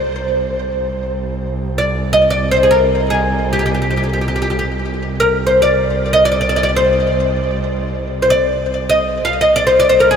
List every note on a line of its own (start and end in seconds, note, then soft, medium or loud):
0.00 1.10 C5 medium
0.10 4.69 C2 medium
1.78 2.12 D5 medium
2.13 2.30 D#5 medium
2.30 2.51 D5 medium
2.51 2.65 C5 medium
2.63 2.71 G#4 medium
2.71 3.10 A#4 medium
3.10 3.52 G#4 medium
3.53 3.58 G4 medium
3.59 3.64 G4 soft
3.66 3.73 G4 medium
3.75 3.81 G4 soft
3.82 3.89 G4 soft
3.91 3.96 G4 soft
3.97 4.02 G4 soft
4.04 4.11 G4 soft
4.13 4.20 G4 soft
4.21 4.27 G4 soft
4.28 4.35 G4 soft
4.36 4.41 G4 soft
4.42 4.49 G4 soft
4.50 4.57 G4 soft
4.59 4.65 G4 soft
4.70 9.28 C2 medium
5.20 5.44 A#4 medium
5.47 5.62 C5 medium
5.62 6.12 D5 medium
6.13 6.24 D#5 medium
6.25 6.30 D5 medium
6.32 6.38 D5 medium
6.41 6.47 D5 medium
6.49 6.55 D5 medium
6.56 6.62 D5 medium
6.63 6.69 D5 medium
6.76 7.90 C5 medium
8.22 8.29 C5 medium
8.30 8.89 D5 medium
8.89 9.23 D#5 medium
9.25 10.16 C2 medium
9.25 9.40 F5 medium
9.41 9.54 D#5 medium
9.56 9.66 D5 medium
9.67 9.78 C5 medium
9.80 9.89 D5 medium
9.89 10.00 C5 medium
10.00 10.10 A#4 medium
10.11 10.16 G#4 medium